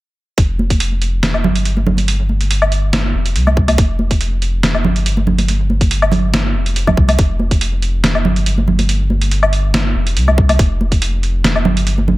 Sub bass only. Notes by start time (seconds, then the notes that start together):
0.38 F1
1.44 G1
3.14 F1
3.35 C2
3.78 F1
4.84 G1
6.55 F1
6.97 C2
7.19 F1
8.25 G1
9.95 F1
10.17 C2
10.59 F1
11.65 G1